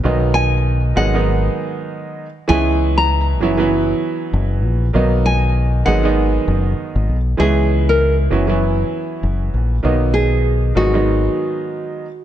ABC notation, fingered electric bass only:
X:1
M:4/4
L:1/16
Q:"Swing 16ths" 1/4=98
K:C#dor
V:1 name="Fingered electric bass" clef=bass
B,,,6 G,,,4 z6 | C,,6 F,,,4 z2 F,,,2 A,,,2 | B,,,6 G,,,4 F,,,2 z G,,, B,,,2 | C,,6 F,,,4 z2 F,,,2 A,,,2 |
B,,,6 G,,,4 z6 |]